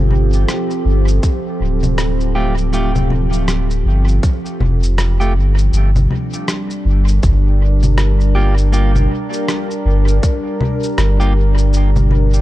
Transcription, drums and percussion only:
0.11 low conga medium
0.33 cabasa soft
0.48 cross-stick medium
0.48 cabasa soft
0.70 cabasa soft
1.08 cabasa soft
1.23 kick medium
1.23 cabasa soft
1.83 low conga medium
1.83 cabasa soft
1.98 cross-stick medium
1.98 cabasa medium
2.20 cabasa soft
2.58 cabasa soft
2.73 cabasa medium
2.95 low conga medium
2.95 cabasa soft
3.10 low conga medium
3.33 cabasa soft
3.48 cross-stick medium
3.48 cabasa soft
3.70 cabasa soft
4.08 cabasa soft
4.23 kick loud
4.23 cabasa medium
4.46 cabasa soft
4.61 low conga medium
4.83 cabasa soft
4.98 cross-stick medium
4.98 cabasa medium
5.21 cabasa soft
5.58 cabasa soft
5.73 cabasa medium
5.96 low conga medium
5.96 cabasa soft
6.11 low conga medium
6.33 cabasa soft
6.48 cross-stick medium
6.48 cabasa medium
6.70 cabasa soft
7.08 cabasa soft
7.23 kick loud
7.23 cabasa medium
7.83 low conga medium
7.83 cabasa soft
7.98 cross-stick medium
7.98 cabasa medium
8.21 cabasa soft
8.58 cabasa soft
8.73 cabasa medium
8.96 low conga medium
8.96 cabasa soft
9.33 cabasa soft
9.48 cross-stick medium
9.48 cabasa medium
9.71 cabasa soft
10.08 cabasa soft
10.23 kick loud
10.23 cabasa medium
10.61 low conga medium
10.83 cabasa soft
10.98 cross-stick medium
10.98 cabasa medium
11.21 cabasa soft
11.58 cabasa soft
11.73 cabasa medium
11.96 low conga medium
11.96 cabasa soft
12.11 low conga medium
12.33 cabasa soft

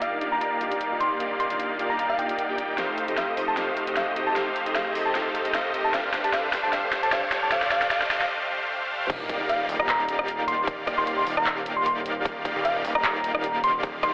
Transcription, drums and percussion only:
0.02 closed hi-hat medium
0.21 closed hi-hat medium
0.41 closed hi-hat medium
0.61 closed hi-hat medium
0.72 closed hi-hat medium
0.81 closed hi-hat medium
1.01 closed hi-hat medium
1.20 closed hi-hat medium
1.40 closed hi-hat medium
1.50 closed hi-hat medium
1.60 closed hi-hat medium
1.79 closed hi-hat medium
1.99 closed hi-hat medium
2.19 closed hi-hat medium
2.29 closed hi-hat medium
2.39 closed hi-hat medium
2.58 closed hi-hat medium
2.78 snare soft
2.78 closed hi-hat medium
2.98 closed hi-hat medium
3.08 closed hi-hat medium
3.17 snare soft
3.17 closed hi-hat medium
3.37 open hi-hat medium
3.57 snare medium
3.57 closed hi-hat medium
3.77 closed hi-hat medium
3.87 closed hi-hat medium
3.97 snare medium
3.97 closed hi-hat medium
4.16 closed hi-hat medium
4.36 snare medium
4.36 closed hi-hat medium
4.56 closed hi-hat medium
4.66 closed hi-hat medium
4.76 snare medium
4.76 closed hi-hat medium
4.95 open hi-hat medium
5.15 snare medium
5.15 closed hi-hat medium
5.35 closed hi-hat medium
5.45 closed hi-hat medium
5.54 snare medium
5.54 closed hi-hat medium
5.74 closed hi-hat medium
5.94 snare medium
5.94 closed hi-hat medium
6.14 snare medium
6.14 closed hi-hat medium
6.24 closed hi-hat medium
6.33 snare medium
6.33 closed hi-hat medium
6.53 snare medium
6.53 open hi-hat loud
6.73 snare medium
6.73 closed hi-hat medium
6.93 snare medium
6.93 closed hi-hat medium
7.03 closed hi-hat medium
7.12 snare medium
7.12 closed hi-hat medium
7.32 snare medium
7.32 closed hi-hat medium
7.52 snare medium
7.52 closed hi-hat medium
7.62 snare medium
7.71 snare medium
7.71 closed hi-hat medium
7.82 snare medium
7.82 closed hi-hat medium
7.91 snare loud
7.91 closed hi-hat medium
8.02 snare medium
8.11 snare loud
8.11 open hi-hat loud
8.21 snare medium
9.10 kick loud
9.10 closed hi-hat medium
9.10 crash loud
9.29 kick medium
9.29 closed hi-hat medium
9.49 closed hi-hat medium
9.69 open hi-hat medium
9.80 cross-stick medium
9.89 clap loud
9.89 closed hi-hat medium
10.09 closed hi-hat medium
10.19 cross-stick medium
10.28 closed hi-hat medium
10.48 closed hi-hat medium
10.67 kick loud
10.67 closed hi-hat medium
10.87 kick medium
10.87 cross-stick medium
10.87 closed hi-hat medium
11.07 closed hi-hat medium
11.27 open hi-hat medium
11.37 cross-stick medium
11.46 clap loud
11.46 closed hi-hat medium
11.66 closed hi-hat medium
11.86 closed hi-hat medium
12.06 closed hi-hat medium
12.25 kick loud
12.25 closed hi-hat medium
12.45 kick medium
12.45 closed hi-hat medium
12.65 closed hi-hat medium
12.85 open hi-hat medium
12.95 cross-stick medium
13.04 clap loud
13.04 closed hi-hat medium
13.24 closed hi-hat medium
13.35 cross-stick medium
13.44 closed hi-hat medium
13.64 closed hi-hat medium
13.83 kick loud
13.83 closed hi-hat medium
14.03 kick medium
14.03 cross-stick medium
14.03 closed hi-hat medium

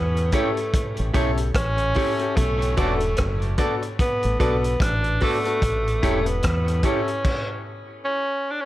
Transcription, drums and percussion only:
0.17 closed hi-hat soft
0.32 kick medium
0.32 closed hi-hat medium
0.57 closed hi-hat soft
0.74 kick loud
0.74 closed hi-hat medium
0.97 closed hi-hat medium
1.14 kick medium
1.14 closed hi-hat medium
1.37 closed hi-hat medium
1.55 kick loud
1.55 cross-stick loud
1.55 closed hi-hat loud
1.78 closed hi-hat soft
1.94 kick medium
1.94 open hi-hat medium
2.19 closed hi-hat medium
2.37 kick loud
2.37 closed hi-hat medium
2.62 closed hi-hat medium
2.77 kick loud
2.77 closed hi-hat medium
3.00 closed hi-hat medium
3.17 kick loud
3.17 cross-stick loud
3.17 closed hi-hat medium
3.42 closed hi-hat soft
3.58 kick loud
3.58 closed hi-hat medium
3.82 closed hi-hat soft
3.99 kick loud
3.99 closed hi-hat medium
4.23 closed hi-hat medium
4.40 kick medium
4.40 closed hi-hat medium
4.64 closed hi-hat medium
4.80 kick loud
4.80 cross-stick loud
4.80 closed hi-hat medium
5.04 closed hi-hat soft
5.20 kick medium
5.20 open hi-hat medium
5.45 closed hi-hat medium
5.62 kick loud
5.62 closed hi-hat medium
5.87 closed hi-hat medium
6.03 kick medium
6.03 closed hi-hat medium
6.26 closed hi-hat medium
6.42 kick medium
6.42 cross-stick loud
6.42 closed hi-hat medium
6.68 closed hi-hat medium
6.83 kick medium
6.83 closed hi-hat medium
7.08 closed hi-hat soft
7.25 kick loud
7.25 crash medium

